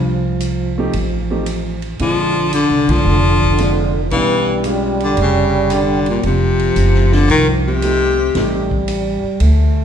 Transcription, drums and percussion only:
0.40 hi-hat pedal soft
0.40 ride medium
0.93 kick soft
0.93 ride medium
1.46 hi-hat pedal soft
1.46 ride medium
1.82 ride soft
1.99 kick soft
1.99 ride soft
2.53 hi-hat pedal soft
2.53 ride medium
2.89 kick medium
2.89 ride medium
3.42 kick soft
3.58 hi-hat pedal soft
3.58 ride medium
4.11 kick soft
4.11 ride soft
4.64 hi-hat pedal soft
4.64 ride medium
5.00 ride soft
5.17 kick soft
5.17 ride soft
5.70 hi-hat pedal medium
5.70 ride medium
6.06 ride soft
6.23 kick soft
6.23 ride soft
6.59 ride soft
6.76 hi-hat pedal soft
6.76 ride medium
6.94 snare soft
7.12 snare soft
7.30 kick soft
7.30 ride medium
7.82 hi-hat pedal soft
7.82 ride medium
8.35 kick soft
8.35 snare soft
8.35 ride medium
8.71 kick soft
8.88 hi-hat pedal soft
8.88 ride medium
9.40 kick soft
9.40 ride medium

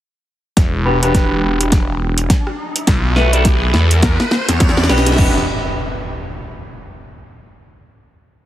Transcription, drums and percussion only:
0.57 kick medium
0.57 snare soft
0.57 closed hi-hat medium
1.03 closed hi-hat medium
1.15 kick loud
1.15 snare soft
1.15 closed hi-hat medium
1.61 cross-stick soft
1.61 closed hi-hat medium
1.72 kick medium
1.72 snare medium
1.72 closed hi-hat medium
2.18 closed hi-hat medium
2.30 kick loud
2.30 snare medium
2.30 closed hi-hat medium
2.47 cross-stick medium
2.76 closed hi-hat medium
2.87 kick medium
2.87 snare medium
2.87 closed hi-hat medium
3.16 snare medium
3.33 closed hi-hat medium
3.45 kick loud
3.45 snare medium
3.45 closed hi-hat medium
3.74 snare medium
3.91 closed hi-hat medium
4.03 kick loud
4.03 snare loud
4.03 closed hi-hat medium
4.20 snare medium
4.31 snare loud
4.49 snare medium
4.49 closed hi-hat medium
4.60 kick loud
4.60 snare loud
4.60 closed hi-hat medium
4.69 snare medium
4.77 snare loud
4.83 snare loud
4.89 snare loud
4.98 snare loud
5.06 snare loud
5.06 closed hi-hat medium
5.12 snare medium
5.16 kick loud
5.16 snare medium
5.16 crash medium
5.21 snare medium
5.27 snare medium
5.32 snare soft
5.37 snare soft

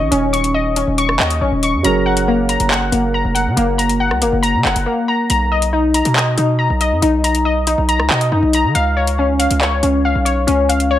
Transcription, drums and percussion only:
0.12 closed hi-hat medium
0.34 closed hi-hat medium
0.44 closed hi-hat medium
0.76 closed hi-hat medium
0.98 closed hi-hat medium
1.09 cross-stick medium
1.20 clap loud
1.30 closed hi-hat medium
1.63 closed hi-hat medium
1.84 closed hi-hat medium
2.17 closed hi-hat medium
2.49 closed hi-hat medium
2.60 closed hi-hat medium
2.71 clap loud
2.92 closed hi-hat medium
3.36 closed hi-hat medium
3.57 closed hi-hat medium
3.79 closed hi-hat medium
3.89 closed hi-hat medium
4.11 cross-stick medium
4.22 closed hi-hat medium
4.43 closed hi-hat medium
4.65 clap loud
4.76 closed hi-hat medium
5.30 closed hi-hat medium
5.62 closed hi-hat medium
5.94 closed hi-hat medium
6.05 closed hi-hat medium
6.16 clap loud
6.38 closed hi-hat medium
6.81 closed hi-hat medium
7.02 closed hi-hat medium
7.24 closed hi-hat medium
7.35 closed hi-hat medium
7.67 closed hi-hat medium
7.89 closed hi-hat medium
8.00 cross-stick medium
8.10 clap loud
8.21 closed hi-hat medium
8.53 closed hi-hat medium
8.75 closed hi-hat medium
9.07 closed hi-hat medium
9.40 closed hi-hat medium
9.51 closed hi-hat medium
9.61 clap loud
9.83 closed hi-hat medium
10.26 closed hi-hat medium
10.48 closed hi-hat medium
10.70 closed hi-hat medium
10.80 closed hi-hat medium

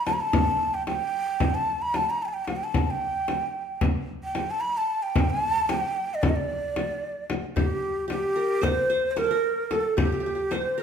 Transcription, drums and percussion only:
0.07 frame drum medium
0.33 frame drum loud
0.87 frame drum medium
1.40 frame drum medium
1.94 frame drum medium
2.47 frame drum medium
2.74 frame drum medium
3.28 frame drum medium
3.81 frame drum medium
4.35 frame drum medium
5.16 frame drum loud
5.69 frame drum medium
6.23 frame drum medium
6.76 frame drum medium
7.30 frame drum medium
7.57 frame drum medium
8.10 frame drum medium
8.63 frame drum medium
9.17 frame drum medium
9.71 frame drum medium
9.98 frame drum loud
10.52 frame drum medium

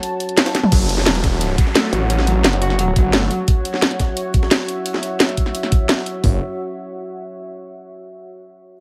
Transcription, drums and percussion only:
0.03 closed hi-hat loud
0.03 closed hi-hat medium
0.20 closed hi-hat medium
0.29 closed hi-hat soft
0.37 snare loud
0.37 closed hi-hat medium
0.37 closed hi-hat loud
0.46 snare loud
0.46 closed hi-hat soft
0.46 closed hi-hat medium
0.55 snare medium
0.55 closed hi-hat medium
0.63 mid tom medium
0.72 kick loud
0.72 closed hi-hat medium
0.72 closed hi-hat loud
0.72 crash loud
0.89 closed hi-hat medium
0.98 snare soft
1.06 snare loud
1.06 closed hi-hat medium
1.06 closed hi-hat loud
1.15 snare soft
1.15 closed hi-hat soft
1.24 kick medium
1.24 snare medium
1.24 closed hi-hat medium
1.41 closed hi-hat medium
1.58 kick loud
1.58 closed hi-hat medium
1.67 snare soft
1.75 snare loud
1.75 closed hi-hat loud
1.75 closed hi-hat medium
1.93 closed hi-hat medium
2.10 closed hi-hat medium
2.19 snare medium
2.19 snare soft
2.27 closed hi-hat medium
2.44 snare loud
2.44 closed hi-hat medium
2.53 snare soft
2.53 closed hi-hat soft
2.62 closed hi-hat medium
2.70 snare soft
2.79 closed hi-hat medium
2.96 kick loud
2.96 closed hi-hat medium
3.13 snare loud
3.13 closed hi-hat medium
3.31 closed hi-hat medium
3.48 kick loud
3.48 closed hi-hat medium
3.65 closed hi-hat medium
3.74 snare soft
3.82 snare loud
3.82 closed hi-hat medium
3.91 snare soft
3.91 closed hi-hat soft
4.00 kick medium
4.00 snare medium
4.00 closed hi-hat medium
4.17 closed hi-hat medium
4.34 kick loud
4.34 closed hi-hat medium
4.43 snare soft
4.51 snare loud
4.51 closed hi-hat medium
4.68 closed hi-hat medium
4.86 closed hi-hat medium
4.94 snare soft
5.03 closed hi-hat medium
5.20 snare loud
5.20 closed hi-hat medium
5.29 snare soft
5.29 closed hi-hat soft
5.37 kick medium
5.37 closed hi-hat medium
5.46 snare soft
5.55 closed hi-hat medium
5.63 snare medium
5.72 kick loud
5.72 closed hi-hat medium
5.89 snare loud
5.89 closed hi-hat medium
6.06 closed hi-hat medium
6.24 kick loud
6.24 floor tom loud
6.24 open hi-hat medium

